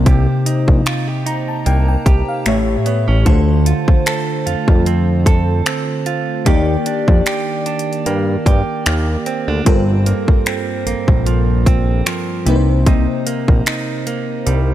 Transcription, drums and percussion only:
0.06 kick, closed hi-hat
0.46 closed hi-hat
0.68 kick
0.86 finger snap, closed hi-hat
1.26 closed hi-hat
1.66 closed hi-hat
2.06 kick, closed hi-hat
2.46 finger snap, closed hi-hat
2.86 closed hi-hat
3.26 kick, closed hi-hat
3.66 closed hi-hat
3.88 kick
4.06 finger snap, closed hi-hat
4.47 closed hi-hat
4.68 kick
4.86 closed hi-hat
5.26 kick, closed hi-hat
5.66 finger snap, closed hi-hat
6.06 closed hi-hat
6.46 kick, closed hi-hat
6.86 closed hi-hat
7.08 kick
7.26 finger snap, closed hi-hat
7.66 closed hi-hat
7.79 closed hi-hat
7.93 closed hi-hat
8.06 closed hi-hat
8.46 kick, closed hi-hat
8.86 finger snap, closed hi-hat
9.26 closed hi-hat
9.66 kick, closed hi-hat
10.06 closed hi-hat
10.28 kick
10.46 finger snap, closed hi-hat
10.87 closed hi-hat
11.08 kick
11.26 closed hi-hat
11.66 kick, closed hi-hat
12.06 finger snap, closed hi-hat
12.46 closed hi-hat
12.86 kick, closed hi-hat
13.27 closed hi-hat
13.48 kick
13.66 finger snap, closed hi-hat
14.07 closed hi-hat
14.47 closed hi-hat

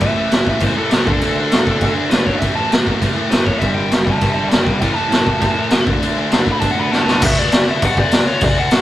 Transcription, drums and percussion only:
0.01 kick, crash
0.32 snare, crash
0.47 kick
0.60 kick, crash
0.91 snare, crash
1.07 kick
1.21 crash
1.52 snare, crash
1.67 kick
1.81 kick, crash
2.11 snare, crash
2.27 kick
2.42 kick, crash
2.72 snare, crash
2.87 kick
3.02 kick, crash
3.32 snare, crash
3.46 kick
3.62 kick, crash
3.92 snare, crash
4.07 kick
4.21 kick, crash
4.51 snare, crash
4.67 kick
4.82 kick, crash
5.12 snare, crash
5.27 kick
5.41 kick, crash
5.71 snare, crash
5.87 kick
6.03 crash
6.32 snare, crash
6.47 kick
6.61 kick, crash
6.93 snare
7.08 snare
7.22 kick, crash
7.52 snare, crash
7.82 kick, crash
7.97 kick
8.12 snare, crash
8.41 kick, crash
8.71 snare, crash

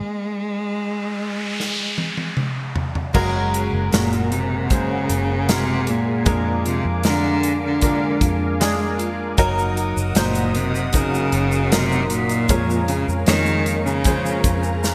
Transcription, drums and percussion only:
1.60 snare
1.98 high tom
2.17 high tom
2.37 mid tom
2.76 floor tom
2.95 floor tom
3.14 kick, crash
3.54 closed hi-hat
3.92 snare, closed hi-hat
4.13 closed hi-hat
4.32 closed hi-hat
4.70 kick, closed hi-hat
5.10 closed hi-hat
5.49 snare, closed hi-hat
5.87 closed hi-hat
6.26 kick, closed hi-hat
6.66 closed hi-hat
7.03 snare, closed hi-hat
7.43 closed hi-hat
7.81 kick, closed hi-hat
8.21 kick, closed hi-hat
8.61 snare, closed hi-hat
8.99 closed hi-hat
9.38 kick, closed hi-hat, shaker
9.59 shaker
9.77 closed hi-hat
9.97 shaker
10.15 snare, closed hi-hat, shaker
10.35 closed hi-hat, shaker
10.55 closed hi-hat
10.75 shaker
10.93 kick, closed hi-hat, shaker
11.14 shaker
11.32 closed hi-hat
11.52 shaker
11.72 snare, closed hi-hat, shaker
11.92 shaker
12.10 closed hi-hat, shaker
12.29 closed hi-hat, shaker
12.49 kick, closed hi-hat, shaker
12.70 shaker
12.88 closed hi-hat, shaker
13.09 shaker
13.26 snare, closed hi-hat, shaker
13.46 shaker
13.66 closed hi-hat, shaker
13.87 shaker
14.04 kick, closed hi-hat, shaker
14.26 shaker
14.44 kick, closed hi-hat, shaker
14.63 shaker
14.84 snare, shaker

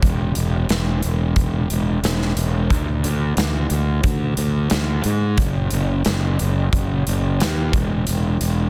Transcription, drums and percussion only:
0.02 kick, closed hi-hat
0.35 closed hi-hat
0.69 snare, closed hi-hat
1.03 closed hi-hat
1.36 kick, closed hi-hat
1.70 closed hi-hat
2.04 snare, closed hi-hat
2.22 snare
2.37 closed hi-hat
2.70 kick, closed hi-hat
3.04 closed hi-hat
3.37 snare, closed hi-hat
3.70 closed hi-hat
4.04 kick, closed hi-hat
4.37 closed hi-hat
4.70 snare, closed hi-hat
5.04 closed hi-hat
5.38 kick, closed hi-hat
5.70 closed hi-hat
6.05 snare, closed hi-hat
6.39 closed hi-hat
6.73 kick, closed hi-hat
7.07 closed hi-hat
7.40 snare, closed hi-hat
7.73 kick, closed hi-hat
8.07 closed hi-hat
8.41 closed hi-hat

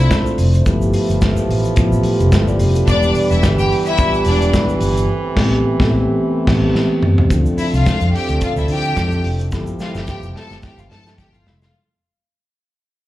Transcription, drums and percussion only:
0.11 kick, snare, closed hi-hat, shaker
0.26 shaker
0.38 open hi-hat, shaker
0.54 closed hi-hat, shaker
0.66 kick, closed hi-hat, shaker
0.82 shaker
0.93 open hi-hat, shaker
1.09 closed hi-hat, shaker
1.21 kick, snare, closed hi-hat, shaker
1.37 shaker
1.50 open hi-hat
1.64 closed hi-hat, shaker
1.76 kick, closed hi-hat, shaker
1.92 shaker
2.03 open hi-hat, shaker
2.20 closed hi-hat, shaker
2.32 kick, snare, closed hi-hat, shaker
2.48 shaker
2.59 open hi-hat, shaker
2.75 closed hi-hat, shaker
2.88 kick, closed hi-hat, shaker
3.03 shaker
3.15 open hi-hat, shaker
3.30 closed hi-hat, shaker
3.43 kick, snare, closed hi-hat, shaker
3.59 shaker
3.72 open hi-hat
3.86 closed hi-hat, shaker
3.98 kick, closed hi-hat, shaker
4.14 shaker
4.25 open hi-hat, shaker
4.42 closed hi-hat, shaker
4.53 kick, snare, closed hi-hat, shaker
4.69 shaker
4.80 open hi-hat, shaker
4.97 closed hi-hat, shaker
5.37 kick, snare, crash
5.80 kick, snare
6.47 kick, snare, crash
6.75 snare
7.03 mid tom
7.18 floor tom
7.30 kick, closed hi-hat, shaker
7.46 shaker
7.58 open hi-hat, shaker
7.73 closed hi-hat, shaker
7.86 kick, snare, closed hi-hat, shaker
8.01 shaker
8.16 open hi-hat
8.29 closed hi-hat, shaker
8.41 kick, closed hi-hat, shaker
8.56 shaker
8.68 open hi-hat
8.84 closed hi-hat, shaker
8.97 kick, snare, closed hi-hat, shaker
9.11 shaker
9.24 open hi-hat
9.39 closed hi-hat, shaker
9.51 kick, snare, shaker
9.67 shaker
9.79 snare, shaker
9.95 snare, shaker
10.07 kick, snare, shaker
10.23 shaker
10.36 snare
10.50 snare, shaker
10.62 kick, snare, shaker
10.78 shaker
10.91 snare
11.06 snare, shaker
11.18 kick, snare, shaker
11.34 shaker
11.47 snare
11.62 snare, shaker

